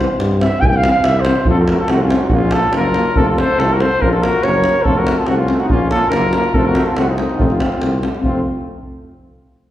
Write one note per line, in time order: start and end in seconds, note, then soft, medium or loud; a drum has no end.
0.00 0.09 E3 medium
0.00 0.17 C5 medium
0.19 0.43 G2 loud
0.19 davul high medium
0.31 davul high soft
0.40 0.50 E3 medium
0.40 0.49 C4 medium
0.40 0.62 E5 loud
0.40 davul high medium
0.60 0.86 C2 loud
0.60 0.67 G5 loud
0.60 davul low loud
0.65 0.71 G#5 medium
0.70 0.78 G5 loud
0.70 davul high soft
0.77 0.90 F5 loud
0.84 0.93 E3 medium
0.84 0.93 C4 medium
0.84 davul high medium
0.91 1.06 F5 loud
0.91 davul high soft
1.04 1.29 C2 loud
1.04 1.22 E5 medium
1.04 davul high medium
1.15 davul high soft
1.20 1.48 C5 medium
1.25 1.36 E3 medium
1.25 1.35 C4 medium
1.25 davul high medium
1.35 davul high soft
1.45 1.70 F2 loud
1.45 1.56 A3 medium
1.45 1.54 C4 medium
1.45 davul low loud
1.50 1.59 F4 medium
1.50 1.59 A4 medium
1.59 1.67 F#4 medium
1.59 1.66 A#4 medium
1.64 1.74 F4 medium
1.64 1.71 A4 medium
1.64 davul high medium
1.69 1.78 A3 medium
1.69 1.78 C4 soft
1.69 1.84 F#4 medium
1.69 1.81 A#4 medium
1.78 1.94 F4 medium
1.78 1.92 A4 medium
1.78 davul high soft
1.88 2.13 C2 medium
1.88 1.99 A3 medium
1.88 1.98 C4 medium
1.88 2.03 F#4 medium
1.88 davul high medium
1.93 2.04 C4 medium
2.02 2.26 C#4 medium
2.02 2.22 F4 medium
2.10 2.20 A3 medium
2.10 2.19 C4 medium
2.10 davul high medium
2.21 2.29 F4 medium
2.21 2.24 F#4 medium
2.21 davul high soft
2.25 2.27 D#4 medium
2.25 2.34 F#4 medium
2.30 2.55 A#1 loud
2.30 2.41 A#3 medium
2.30 2.40 C#4 medium
2.30 2.37 D#4 medium
2.30 2.54 F4 medium
2.30 davul low loud
2.35 2.57 C#4 medium
2.51 2.62 A#3 medium
2.51 2.61 C#4 medium
2.51 2.74 A4 loud
2.51 davul high medium
2.55 2.75 F4 medium
2.63 davul high soft
2.73 2.97 F#1 medium
2.73 2.83 A#3 medium
2.73 2.82 C#4 medium
2.73 3.20 F4 medium
2.73 3.19 A#4 medium
2.73 davul high medium
2.94 3.05 A#3 medium
2.94 3.03 C#4 medium
2.94 davul high medium
3.06 davul high soft
3.16 3.40 F1 loud
3.16 3.27 A3 medium
3.16 3.25 C4 medium
3.16 3.28 A4 loud
3.16 davul low loud
3.20 3.29 F4 medium
3.29 3.42 F4 medium
3.29 3.40 A4 medium
3.38 3.48 A3 medium
3.38 3.47 C4 medium
3.38 3.64 A4 medium
3.38 3.61 C5 loud
3.38 davul high medium
3.50 davul high soft
3.59 3.82 C2 loud
3.59 3.68 A3 medium
3.59 3.67 C4 medium
3.59 3.74 F4 medium
3.59 3.74 A4 loud
3.59 davul high medium
3.73 3.84 F#4 medium
3.73 3.82 A#4 medium
3.80 3.88 A3 medium
3.80 3.90 C4 medium
3.80 4.06 A4 medium
3.80 4.03 C5 loud
3.80 davul high medium
3.92 davul high soft
4.00 4.25 A#1 loud
4.00 4.09 A#3 medium
4.00 4.11 C#4 medium
4.00 4.11 A#4 medium
4.00 davul low medium
4.04 4.13 F4 loud
4.11 4.29 F4 medium
4.11 4.24 A4 medium
4.11 davul high soft
4.21 4.30 A#3 medium
4.21 4.31 C#4 medium
4.21 4.45 A#4 loud
4.21 davul high medium
4.28 4.50 F#4 medium
4.33 davul high soft
4.43 4.67 F#1 medium
4.43 4.52 A#3 medium
4.43 4.53 C#4 medium
4.43 4.85 C#5 loud
4.43 davul high medium
4.48 4.88 A#4 medium
4.54 davul high soft
4.64 4.73 A#3 medium
4.64 4.72 C#4 medium
4.64 davul high medium
4.76 davul high soft
4.84 5.08 F1 loud
4.84 4.95 A3 medium
4.84 4.93 C4 medium
4.84 5.00 F4 medium
4.84 4.99 A4 medium
4.84 davul low medium
4.98 5.19 F#4 medium
4.98 5.20 A#4 medium
5.07 5.16 A3 medium
5.07 5.15 C4 medium
5.07 davul high medium
5.17 5.31 F4 medium
5.17 5.28 A4 medium
5.17 davul high soft
5.27 5.51 C2 medium
5.27 5.37 A3 medium
5.27 5.37 C4 medium
5.27 5.39 C4 medium
5.27 5.36 F#4 loud
5.27 davul high medium
5.37 5.61 F4 medium
5.41 5.63 C#4 medium
5.48 5.60 A3 medium
5.48 5.57 C4 medium
5.48 davul high medium
5.59 5.71 D#4 medium
5.59 5.68 F#4 medium
5.59 davul high soft
5.69 5.92 A#1 medium
5.69 5.80 A#3 medium
5.69 5.78 C#4 medium
5.69 5.89 F4 loud
5.69 davul low medium
5.74 5.91 C#4 medium
5.91 6.01 A#3 medium
5.91 5.99 C#4 medium
5.91 6.14 F4 medium
5.91 6.11 A4 loud
5.91 davul high medium
6.03 davul high soft
6.09 6.34 F#1 loud
6.09 6.19 C#4 medium
6.09 6.56 A#4 loud
6.09 davul high medium
6.14 6.23 A#3 medium
6.14 6.55 F4 medium
6.33 6.44 A#3 medium
6.33 6.41 C#4 medium
6.33 davul high medium
6.44 davul high soft
6.53 6.77 F1 loud
6.53 6.64 A3 medium
6.53 6.63 C4 medium
6.53 6.70 F4 medium
6.53 6.67 A4 loud
6.53 davul low loud
6.65 6.89 F#4 medium
6.65 6.86 A#4 medium
6.75 6.84 A3 medium
6.75 6.83 C4 medium
6.75 davul high medium
6.85 6.97 F4 medium
6.85 6.96 A4 medium
6.85 davul high soft
6.96 7.19 C2 loud
6.96 7.05 A3 medium
6.96 7.05 C4 medium
6.96 7.10 C4 medium
6.96 7.09 F#4 medium
6.96 davul high medium
7.08 7.14 C#4 medium
7.08 7.14 D#4 medium
7.08 7.11 F4 medium
7.12 7.19 C4 soft
7.12 7.19 F4 medium
7.17 7.25 A3 medium
7.17 7.25 C4 medium
7.17 7.23 C#4 medium
7.17 7.39 D#4 medium
7.17 davul high medium
7.22 7.43 C4 medium
7.29 davul high soft
7.38 7.62 F1 loud
7.38 7.47 A3 medium
7.38 7.46 C4 medium
7.38 7.44 F4 medium
7.38 davul low loud
7.43 7.47 C4 medium
7.43 7.55 C4 medium
7.43 7.53 D#4 medium
7.50 8.02 F4 medium
7.50 davul high soft
7.55 8.03 C4 medium
7.60 7.68 A3 medium
7.60 7.68 C4 medium
7.60 davul high medium
7.72 davul high soft
7.80 8.04 C2 loud
7.80 7.91 A3 medium
7.80 7.90 C4 medium
7.80 davul high medium
7.93 davul high soft
8.00 8.12 A3 medium
8.00 8.09 C4 medium
8.00 davul high medium
8.15 davul high soft
8.20 8.43 F1 medium
8.20 8.41 C4 medium
8.20 8.42 F4 medium
8.20 davul low medium
8.25 8.43 A3 medium
8.25 8.44 C4 medium